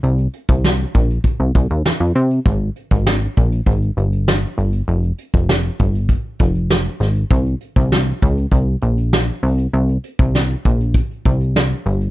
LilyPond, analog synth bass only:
\new Staff \with { instrumentName = "Analog synth bass" } { \clef bass \time 4/4 \key c \phrygian \tempo 4 = 99 c,8 r16 c,8. bes,,8 r16 c,16 c,16 ees,16 f,16 f,16 c8 | aes,,8 r16 aes,,8. bes,,8 aes,,8 g,,4 g,,8 | f,,8 r16 f,,8. g,,8. r16 f,,4 aes,,8 | c,8 r16 c,8. des,8 c,8 bes,,4 c,8 |
c,8 r16 c,8. bes,,8. r16 c,4 g,,8 | }